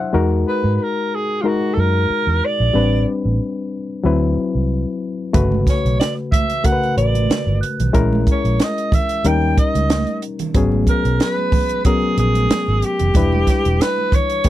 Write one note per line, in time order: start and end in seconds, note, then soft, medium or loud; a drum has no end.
0.00 0.16 F#3 medium
0.00 0.15 D4 medium
0.00 0.16 E4 medium
0.00 0.16 C5 medium
0.00 0.15 E5 medium
0.00 0.30 F#5 medium
0.13 0.43 E2 loud
0.13 1.12 G#3 medium
0.13 1.13 D#4 medium
0.13 1.13 F#4 medium
0.13 1.13 A#4 medium
0.48 0.75 B4 medium
0.64 0.77 G#2 medium
0.75 0.84 B4 medium
0.83 1.16 A#4 medium
1.15 1.43 G#4 medium
1.41 2.43 G#3 medium
1.41 2.43 D#4 medium
1.41 1.49 F4 medium
1.41 2.43 F#4 medium
1.45 1.75 F#4 medium
1.45 2.44 A#4 medium
1.74 2.06 F#2 medium
1.74 1.81 A4 medium
1.79 2.47 A#4 loud
2.10 muted fingered electric bass stroke soft
2.27 2.40 E2 medium
2.45 3.08 D5 loud
2.60 2.73 A#1 medium
2.73 3.04 A1 loud
2.73 3.73 G3 medium
2.73 3.73 C4 medium
2.73 3.74 D4 medium
2.73 3.74 B4 medium
3.25 3.38 A1 medium
4.03 4.34 D2 loud
4.03 5.03 F#3 medium
4.03 5.03 C4 medium
4.03 5.04 E4 medium
4.03 5.04 B4 medium
4.37 muted fingered electric bass stroke soft
4.55 4.84 C2 medium
5.33 5.64 G1 medium
5.33 6.33 C#3 medium
5.33 6.33 A3 medium
5.33 6.33 F#4 medium
5.33 6.34 B4 medium
5.33 kick loud
5.33 closed hi-hat medium
5.33 low conga medium
5.52 high conga medium
5.67 5.98 C#5 medium
5.67 kick medium
5.67 snare soft
5.67 closed hi-hat medium
5.85 5.98 B1 medium
5.85 closed hi-hat soft
5.99 6.14 D5 medium
5.99 snare medium
5.99 closed hi-hat medium
5.99 muted conga soft
6.32 6.66 E5 medium
6.32 kick medium
6.32 closed hi-hat medium
6.32 high conga medium
6.32 low conga medium
6.50 closed hi-hat soft
6.64 7.64 C#3 medium
6.64 7.63 A3 medium
6.64 7.64 F#4 medium
6.64 6.72 A#4 medium
6.64 6.97 F#5 loud
6.64 kick medium
6.64 closed hi-hat medium
6.72 7.67 B4 medium
6.83 closed hi-hat soft
6.97 7.26 A1 medium
6.97 7.58 D5 medium
6.97 closed hi-hat medium
7.15 closed hi-hat soft
7.15 high conga soft
7.30 snare loud
7.30 closed hi-hat medium
7.30 muted conga soft
7.30 high conga medium
7.47 7.60 G1 medium
7.61 8.23 F#6 medium
7.61 closed hi-hat medium
7.80 7.93 B1 medium
7.80 closed hi-hat medium
7.80 low conga medium
7.93 8.24 A#1 loud
7.93 8.93 G#3 medium
7.93 8.93 C#4 medium
7.93 8.93 E4 medium
7.93 8.94 A#4 loud
7.93 kick medium
7.93 closed hi-hat medium
7.93 muted conga soft
7.93 low conga medium
8.13 muted conga soft
8.13 high conga medium
8.27 kick medium
8.27 closed hi-hat medium
8.31 8.65 C#5 medium
8.44 8.58 A#1 medium
8.44 closed hi-hat soft
8.60 8.96 D#5 medium
8.60 snare medium
8.60 closed hi-hat medium
8.60 muted conga soft
8.78 closed hi-hat soft
8.92 9.28 E5 medium
8.92 kick medium
8.92 closed hi-hat medium
8.92 low conga medium
9.09 closed hi-hat medium
9.24 9.54 D#2 loud
9.24 10.23 G3 medium
9.24 10.23 C#4 medium
9.24 10.24 D#4 medium
9.24 10.24 A#4 medium
9.24 9.58 G5 loud
9.24 closed hi-hat medium
9.24 muted conga soft
9.42 muted conga soft
9.58 10.19 D#5 medium
9.58 muted fingered electric bass stroke soft
9.58 kick medium
9.58 closed hi-hat medium
9.75 10.04 C#2 medium
9.75 closed hi-hat medium
9.75 high conga soft
9.89 snare loud
9.89 closed hi-hat medium
9.89 high conga medium
10.07 closed hi-hat soft
10.07 muted conga soft
10.22 closed hi-hat medium
10.39 closed hi-hat medium
10.39 low conga medium
10.54 10.84 G#1 loud
10.54 11.54 F#3 medium
10.54 11.54 B3 medium
10.54 11.54 C#4 medium
10.54 11.55 G#4 medium
10.54 kick loud
10.54 closed hi-hat medium
10.54 muted conga soft
10.54 low conga medium
10.72 high conga medium
10.87 11.23 A#4 medium
10.87 kick medium
10.87 closed hi-hat medium
11.05 11.18 B1 medium
11.05 closed hi-hat soft
11.20 11.85 B4 medium
11.20 snare medium
11.20 closed hi-hat medium
11.37 muted conga soft
11.52 kick medium
11.52 open hi-hat medium
11.52 high conga medium
11.52 low conga medium
11.69 closed hi-hat medium
11.85 12.84 F#3 medium
11.85 12.84 B3 medium
11.85 12.84 C#4 medium
11.85 12.15 G#4 medium
11.85 12.85 A#4 medium
11.85 kick medium
11.85 closed hi-hat medium
12.02 muted conga soft
12.18 12.47 A#1 medium
12.18 12.87 G#4 medium
12.18 closed hi-hat medium
12.34 closed hi-hat medium
12.34 high conga soft
12.49 snare loud
12.49 closed hi-hat medium
12.49 high conga medium
12.67 12.81 G#1 medium
12.67 muted conga soft
12.82 13.83 G4 loud
12.82 closed hi-hat medium
12.99 13.14 F1 loud
12.99 closed hi-hat medium
12.99 low conga medium
13.14 13.44 E1 loud
13.14 14.14 G3 medium
13.14 14.14 D4 medium
13.14 14.14 E4 medium
13.14 14.14 B4 medium
13.14 kick loud
13.14 closed hi-hat medium
13.14 muted conga soft
13.14 low conga medium
13.32 muted conga soft
13.32 high conga medium
13.47 kick medium
13.47 snare soft
13.47 closed hi-hat medium
13.65 13.79 E1 medium
13.65 closed hi-hat soft
13.80 14.16 B4 medium
13.80 snare medium
13.80 closed hi-hat medium
13.80 muted conga soft
13.98 muted conga soft
14.12 14.49 C#5 loud
14.12 kick medium
14.12 closed hi-hat medium
14.12 low conga medium
14.30 closed hi-hat soft
14.44 14.49 A1 medium
14.44 14.49 A3 medium
14.44 14.49 C#4 medium
14.44 14.49 G4 medium
14.44 14.49 B4 medium
14.44 kick medium
14.44 closed hi-hat medium